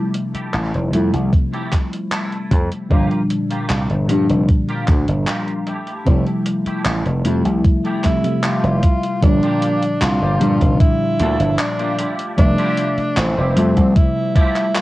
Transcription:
Already playing: fm electric piano C3 F3 G3 A3 E4, clean electric guitar A3 E4 G4
0.14 closed hi-hat
0.34 clean electric guitar A3 E4 G4, muted slap bass stroke, closed hi-hat
0.54 slap bass A1, clap, closed hi-hat
0.74 slap bass F1, closed hi-hat
0.91 slap bass F2, fm electric piano C3 F3 G3 A3 E4, closed hi-hat
1.13 slap bass C2, muted clean electric guitar stroke, closed hi-hat
1.32 muted clean electric guitar stroke, kick, closed hi-hat
1.53 clean electric guitar A3 E4 G4, closed hi-hat
1.72 kick, clap, closed hi-hat
1.92 muted clean electric guitar stroke, closed hi-hat
2.11 clean electric guitar A3 E4 A4, clap, closed hi-hat
2.32 closed hi-hat
2.51 slap bass F2, kick, closed hi-hat
2.72 closed hi-hat
2.89 slap bass G1, fm electric piano A#2 D3 F3 G3 D4, clean electric guitar A#3 F4 G4, kick, closed hi-hat
3.11 closed hi-hat
3.30 closed hi-hat
3.50 clean electric guitar A#3 F4 G4, closed hi-hat
3.70 slap bass C2, clap, closed hi-hat
3.90 slap bass G1, closed hi-hat
4.07 slap bass G2, fm electric piano A#2 D3 F3 G3 D4, closed hi-hat
4.29 slap bass F1, muted clean electric guitar stroke, closed hi-hat
4.48 muted clean electric guitar stroke, kick, closed hi-hat
4.69 clean electric guitar A#3 F4 G4, closed hi-hat
4.88 slap bass D2, kick, clap, closed hi-hat
5.08 slap bass G1, muted clean electric guitar stroke, closed hi-hat
5.27 clean electric guitar A#3 F4 G4, clap, closed hi-hat
5.48 closed hi-hat
5.67 clean electric guitar A3 E4 G4, closed hi-hat
5.87 closed hi-hat
6.05 slap bass F1, fm electric piano C3 F3 G3 A3 E4, kick, closed hi-hat
6.27 closed hi-hat
6.46 closed hi-hat
6.66 clean electric guitar A3 E4 G4, muted slap bass stroke, closed hi-hat
6.85 slap bass A1, clap, closed hi-hat
7.06 slap bass F1, closed hi-hat
7.25 slap bass F2, fm electric piano C3 F3 G3 A3 E4, closed hi-hat
7.45 slap bass C2, muted clean electric guitar stroke, closed hi-hat
7.64 muted clean electric guitar stroke, kick, closed hi-hat
7.84 clean electric guitar A3 E4 G4, closed hi-hat
8.03 fm electric piano C3 F3 G3 A3 E4, tenor saxophone E4, kick, clap, closed hi-hat
8.23 fm electric piano C3 F3 G3 A3 E5, muted clean electric guitar stroke, closed hi-hat
8.43 clean electric guitar A3 E4 G4, tenor saxophone F4, clap, closed hi-hat
8.63 slap bass F1, closed hi-hat
8.83 kick, closed hi-hat
9.03 closed hi-hat
9.21 slap bass G1, fm electric piano A#2 D3 F3 G3 D4, tenor saxophone D4, kick, closed hi-hat
9.42 clean electric guitar A#3 D4 F4 G4, closed hi-hat
9.62 closed hi-hat
9.82 closed hi-hat
10.01 slap bass C2, tenor saxophone F4, clap, closed hi-hat
10.21 slap bass G1, clean electric guitar A#3 D4 F4 G4
10.39 slap bass G2, fm electric piano A#2 D3 F3 G3 D4, closed hi-hat
10.61 slap bass F1, kick, closed hi-hat
10.80 tenor saxophone E4, kick, closed hi-hat
11.00 muted clean electric guitar stroke
11.19 slap bass D2, clean electric guitar A#3 D4 F4 A4, closed hi-hat
11.40 slap bass G1, closed hi-hat
11.59 tenor saxophone D4, clap, closed hi-hat
11.79 clean electric guitar A#3 D4 F4 G4, closed hi-hat
11.98 clean electric guitar A3 E4 F4 G4, closed hi-hat
12.19 closed hi-hat
12.37 slap bass F1, fm electric piano C3 F3 G3 A3 E5, tenor saxophone D4, kick, closed hi-hat
12.58 clean electric guitar A3 E4 F4 G4, closed hi-hat
12.78 closed hi-hat
12.98 muted slap bass stroke, closed hi-hat
13.17 slap bass A1, tenor saxophone C4, clap, closed hi-hat
13.37 slap bass F1, clean electric guitar A3 E4 F4 G4
13.55 slap bass F2, fm electric piano C3 F3 G3 A3 E5, closed hi-hat
13.77 slap bass C2, kick, closed hi-hat
13.96 tenor saxophone E4, kick, closed hi-hat
14.16 muted clean electric guitar stroke
14.35 clean electric guitar A3 E4 F4 G4, tenor saxophone E4, kick, closed hi-hat
14.56 clap, closed hi-hat
14.75 tenor saxophone F4, clap, closed hi-hat

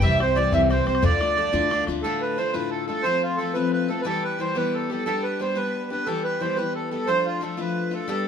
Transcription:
0.01 upright bass C2, steel-string acoustic guitar C3 E3 G3 C4 G4, bansuri E5, accordion E5, bodhran
0.20 steel-string acoustic guitar G3 C4 G4, bansuri C5, accordion C5, bodhran
0.36 steel-string acoustic guitar E3 G3 C4 G4, accordion D5, bodhran
0.52 upright bass C2, steel-string acoustic guitar C3 E3 G3 C4 G4, bansuri E5, accordion E5, bodhran
0.70 steel-string acoustic guitar E3 G3 C4 G4, bansuri C5, accordion C5, bodhran
0.86 upright bass C2, steel-string acoustic guitar G3 C4 G4, bansuri C5, accordion C5, bodhran
0.95 bodhran
1.02 steel-string acoustic guitar D2 A2 D3 A3 D4 F4, upright bass D2, bansuri D5, accordion D5, bodhran
1.20 steel-string acoustic guitar D3 A3 D4 F4, bodhran
1.37 steel-string acoustic guitar D3 A3 D4 F4, bodhran
1.53 upright bass D2, steel-string acoustic guitar D2 A2 D3 A3 D4 F4, bodhran
1.70 steel-string acoustic guitar D3 A3 D4 F4, bodhran
1.87 upright bass D2, steel-string acoustic guitar D3 A3 D4 F4, bodhran
2.02 steel-string acoustic guitar D2 A2 D3 A3 D4 F4, accordion A4
2.21 accordion B4
2.37 steel-string acoustic guitar D3 A3 D4 F4, accordion C5
2.53 steel-string acoustic guitar D2 A2 D3 A3 D4 F4, accordion B4
2.70 accordion A4
2.87 steel-string acoustic guitar D3 A3 D4 F4, accordion A4
3.03 steel-string acoustic guitar F3 A3 C4 F4, accordion C5
3.22 accordion F4
3.37 steel-string acoustic guitar F3 A3 C4, accordion A4
3.41 steel-string acoustic guitar F4
3.53 steel-string acoustic guitar F3 A3 C4 F4, accordion B4
3.73 accordion B4
3.88 steel-string acoustic guitar A3 C4 F4, accordion A4
4.01 steel-string acoustic guitar E3, accordion B4
4.05 steel-string acoustic guitar G3 B3 G4, accordion A4
4.24 accordion B4
4.39 steel-string acoustic guitar E3 G3 B3 G4, accordion C5
4.55 steel-string acoustic guitar E3 G3 B3 G4, accordion B4
4.75 accordion A4
4.90 steel-string acoustic guitar G3 B3 G4, accordion A4
5.06 steel-string acoustic guitar G3 B3 D4 G4, accordion A4
5.23 accordion B4
5.39 steel-string acoustic guitar G3 B3 D4 G4, accordion C5
5.55 steel-string acoustic guitar G3 B3 D4 G4, accordion B4
5.90 steel-string acoustic guitar B3 D4 G4, accordion B4
6.06 steel-string acoustic guitar E3 G3 B3 G4, accordion A4
6.24 accordion B4
6.40 steel-string acoustic guitar E3 G3 B3 G4, accordion C5
6.56 steel-string acoustic guitar E3 G3 B3 G4, accordion B4
6.75 accordion A4
6.91 steel-string acoustic guitar G3 B3 G4, accordion A4
7.07 steel-string acoustic guitar F3 A3 D4 F4, accordion C5
7.25 accordion F4
7.41 steel-string acoustic guitar F3 A3 D4 F4, accordion A4
7.57 steel-string acoustic guitar F3 A3 D4 F4, accordion B4
7.91 steel-string acoustic guitar A3 D4 F4, accordion A4
8.08 steel-string acoustic guitar G3 B3 D4 G4, accordion A4

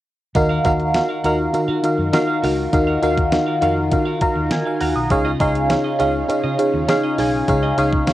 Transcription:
0.35 fingered electric bass D#2, string machine D#3 D#4 F4 F#4 A#4, fm electric piano D#3 D#4 F#4 A#4 F5, muted clean electric guitar stroke, kick, closed hi-hat
0.49 clean electric guitar F#4 A#4 F5
0.64 fingered electric bass D#2, fm electric piano D#4 F#4 A#4 F5, clean electric guitar F#4 A#4 F5, kick, closed hi-hat
0.80 muted clean electric guitar stroke, closed hi-hat
0.94 fm electric piano D#4 F#4 A#4 F5, muted clean electric guitar stroke, snare, closed hi-hat
1.09 clean electric guitar F#4 A#4 F5
1.24 fingered electric bass D#2, fm electric piano D#4 F#4 A#4 F5, clean electric guitar F#4 A#4 F5, closed hi-hat
1.39 muted clean electric guitar stroke
1.53 fm electric piano D#4 F#4 A#4 F5, muted clean electric guitar stroke, muted fingered electric bass stroke, closed hi-hat
1.68 fingered electric bass D#3, clean electric guitar F#4 A#4 F5
1.83 fm electric piano D#4 F#4 A#4 F5, muted clean electric guitar stroke, closed hi-hat
1.98 fingered electric bass F#2, muted clean electric guitar stroke
2.13 fm electric piano D#4 F#4 A#4 F5, muted clean electric guitar stroke, snare, closed hi-hat
2.27 clean electric guitar F#4 A#4 F5
2.42 fingered electric bass C#2, fm electric piano D#4 F#4 A#4 F5, clean electric guitar F#4 A#4 F5, open hi-hat
2.57 muted clean electric guitar stroke
2.72 fingered electric bass D#2, fm electric piano D#3 D#4 F#4 A#4 F5, muted clean electric guitar stroke, kick, closed hi-hat
2.87 clean electric guitar F#4 A#4 F5
3.02 fingered electric bass D#2, fm electric piano D#4 F#4 A#4 F5, clean electric guitar F#4 A#4 F5, closed hi-hat
3.17 muted clean electric guitar stroke, kick, closed hi-hat
3.32 fm electric piano D#4 F#4 A#4 F5, muted clean electric guitar stroke, snare, closed hi-hat
3.46 clean electric guitar F#4 A#4 F5
3.61 fingered electric bass F2, fm electric piano D#4 F#4 A#4 F5, clean electric guitar F#4 A#4 F5, closed hi-hat
3.76 muted clean electric guitar stroke
3.91 fingered electric bass D#3, fm electric piano D#4 F#4 A#4 F5, muted clean electric guitar stroke, kick, closed hi-hat
4.06 clean electric guitar F#4 A#4 F5
4.21 fm electric piano D#4 F#4 A#4 F5 A#5, muted clean electric guitar stroke, kick, closed hi-hat
4.36 fingered electric bass D#2, muted clean electric guitar stroke
4.51 fingered electric bass D#3, fm electric piano G#5, muted clean electric guitar stroke, snare, closed hi-hat
4.66 clean electric guitar F#4 A#4 F5, fm electric piano F5 G#5
4.80 fingered electric bass D#2, clean electric guitar F#4 A#4 F5, fm electric piano F#5 A#5, open hi-hat
4.95 fingered electric bass B1, fm electric piano D#6, muted clean electric guitar stroke
5.10 fingered electric bass C#2, string machine C#3 C#4 G#4, fm electric piano C#3 D#4 G#4 C#5 F5, muted clean electric guitar stroke, kick, closed hi-hat
5.25 clean electric guitar F4 G#4 D#5
5.40 fingered electric bass C#2, fm electric piano D#4 G#4 C#5 F5, clean electric guitar F4 G#4 D#5, kick, closed hi-hat
5.55 closed hi-hat
5.69 fm electric piano D#4 G#4 C#5 F5, muted clean electric guitar stroke, snare, closed hi-hat
5.84 clean electric guitar F4 G#4 D#5
5.99 fingered electric bass C#2, fm electric piano D#4 G#4 C#5 F5, clean electric guitar F4 G#4 D#5, closed hi-hat
6.28 fm electric piano D#4 G#4 C#5 F5, muted fingered electric bass stroke, muted clean electric guitar stroke, closed hi-hat
6.44 fingered electric bass C#3, clean electric guitar F4 G#4 D#5
6.58 fm electric piano D#4 G#4 C#5 F5, closed hi-hat
6.74 fingered electric bass D#2, muted clean electric guitar stroke
6.88 fm electric piano D#4 G#4 C#5 F5, muted clean electric guitar stroke, snare, closed hi-hat
7.03 clean electric guitar F4 G#4 D#5
7.18 fingered electric bass B1, fm electric piano D#4 G#4 C#5 G#5, clean electric guitar F4 G#4 D#5, open hi-hat
7.33 muted clean electric guitar stroke
7.48 fingered electric bass C#2, fm electric piano C#3 D#4 G#4 C#5 F5, muted clean electric guitar stroke, kick, closed hi-hat
7.63 clean electric guitar F4 G#4 D#5
7.78 fingered electric bass C#2, fm electric piano D#4 G#4 C#5 F5, clean electric guitar F4 G#4 D#5, closed hi-hat
7.93 muted clean electric guitar stroke, kick
8.07 fm electric piano D#4 G#4 C#5 F5, muted clean electric guitar stroke, snare, closed hi-hat

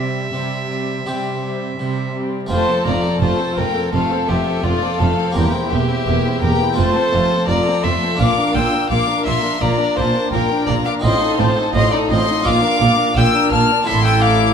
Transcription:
Already playing: harpsichord C3, cello section C3, viola section G3, violin section C4 G4, violin E5
0.31 harpsichord C3, cello section C3, viola section G3, violin section C4 G4
0.68 viola section G3, violin section C4 G4
1.05 cello section C3, harpsichord C3 C4 G4, viola section G3, violin section C4 G4
1.42 viola section G3, violin section C4 G4
1.78 cello section C3, harpsichord C3, viola section G3, violin section C4 G4
2.14 viola section G3, violin section C4 G4
2.47 harpsichord A3 C4 F4, violin section F4 A5
2.51 double bass section F1, harpsichord F2, cello section F2, viola section A3, violin C5
2.68 viola section C4, violin section A4
2.85 double bass section F1, cello section F2, harpsichord F2, viola section A3, violin section F4 A#5, violin D5
3.03 viola section C4, violin section A4
3.20 double bass section F1, cello section F2, harpsichord F2, viola section A3, violin section F4 A5, violin C5
3.39 viola section C4, violin section A4
3.57 double bass section F1, harpsichord F2, cello section F2, viola section A3, violin section F4 G5, violin A#4
3.74 viola section C4, violin section A4
3.92 double bass section F1, harpsichord F2, cello section F2, viola section A3, violin section F4 F5, violin A4
4.11 viola section C4, violin section A4
4.28 double bass section F1, cello section F2, harpsichord F2, viola section A3, violin section F4 E5, violin G4
4.47 viola section C4, violin section A4
4.64 double bass section F1, cello section F2, harpsichord F2, viola section A3, violin F4, violin section F4 D5
4.83 viola section C4, violin section A4
4.99 double bass section F1, harpsichord F2, cello section F2, viola section A3, violin section F4 F5, violin A4
5.17 viola section C4, violin section A4
5.31 harpsichord A#3 C4 G4, violin section G4, violin A#4
5.35 double bass section E1, harpsichord E2, cello section E2, viola section A#3, violin section G5
5.53 viola section C4, violin section E4
5.70 double bass section E1, harpsichord E2, cello section E2, viola section A#3, violin section G4 E5, violin G4
5.89 viola section C4, violin section E4
6.06 double bass section E1, harpsichord E2, cello section E2, viola section A#3, violin section G4
6.25 viola section C4, violin section E4
6.42 double bass section E1, harpsichord E2, cello section E2, viola section A#3, violin section G4 G5, violin A#4
6.60 viola section C4, violin section E4
6.73 harpsichord A3 C4 F4
6.77 double bass section F1, harpsichord F2, cello section F2, viola section A3, violin section F4 A5, violin C5
6.96 viola section C4, violin section A4
7.13 double bass section F1, harpsichord F2, cello section F2, viola section A3, violin section F4
7.32 viola section C4, violin section A4
7.47 double bass section F1, harpsichord F2, cello section F2, viola section A3, violin section F4 A#5, violin D5
7.67 viola section C4, violin section A4
7.83 double bass section F1, harpsichord F2, cello section F2, viola section A3, violin section F4 C6, violin E5
8.02 viola section C4, violin section A4
8.15 harpsichord A#3 D4 F4
8.19 double bass section A#1, harpsichord A#2, cello section A#2, viola section A#3, violin section F4 D6, violin F5
8.38 viola section D4, violin section A#4
8.54 double bass section A#1, harpsichord A#2, cello section A#2, viola section A#3, violin section F4 E6, violin G5
8.74 viola section D4, violin section A#4
8.90 double bass section A#1, harpsichord A#2, cello section A#2, viola section A#3, violin section F4 D6, violin F5
9.08 viola section D4, violin section A#4
9.26 double bass section A#1, cello section A#2, harpsichord A#2, viola section A#3, violin section F4 C6, violin E5
9.44 viola section D4, violin section A#4
9.61 double bass section A#1, cello section A#2, harpsichord A#2, viola section A#3, violin section F4 A#5, violin D5
9.80 viola section D4, violin section A#4
9.96 double bass section A#1, cello section A#2, harpsichord A#2, viola section A#3, violin section F4 A5, violin C5
10.15 viola section D4, violin section A#4
10.32 double bass section A#1, cello section A#2, harpsichord A#2, viola section A#3, violin section F4 G5, violin A#4
10.50 viola section D4, violin section A#4
10.66 double bass section A#1, cello section A#2, harpsichord A#2, viola section A#3, violin section F4 A#5, violin D5
10.85 viola section D4, violin section A#4 D6, violin F5
11.00 harpsichord C4 D#4 F4, violin section F4, violin D#5
11.04 double bass section A1, cello section A2, harpsichord A2, viola section C4, violin section C6
11.21 viola section D#4, violin section A4
11.38 double bass section A1, cello section A2, harpsichord A2, viola section C4, violin section F4 A5, violin C5
11.55 viola section D#4, violin section A4
11.73 double bass section A1, cello section A2, harpsichord A2, viola section C4, violin section F4 C6, violin D#5
11.91 viola section D#4, violin section A4 A#5, violin D5
12.09 double bass section A1, cello section A2, harpsichord A2, viola section C4, violin section F4 C6, violin D#5
12.27 viola section D#4, violin section A4
12.41 harpsichord A#3 D4 F4, violin section F4
12.45 double bass section A#1, harpsichord A#2, cello section A#2, viola section A#3, violin F5, violin section D6
12.62 viola section D4, violin section A#4
12.79 double bass section A#1, harpsichord A#2, cello section A#2, viola section A#3, violin section F4
12.97 viola section D4, violin section A#4
13.15 double bass section A#1, cello section A#2, harpsichord A#2, viola section A#3, violin section F4 E6, violin G5
13.33 viola section D4, violin section A#4
13.51 double bass section A#1, cello section A#2, harpsichord A#2, viola section A#3, violin section F4 F6, violin A5
13.68 viola section D4, violin section A#4
13.83 harpsichord C4 E4 A4, violin section A4
13.87 double bass section A1, cello section A2, harpsichord A2, viola section E4, violin E5, violin section C6
14.04 violin G5, violin section E6
14.22 violin F5, violin section D6

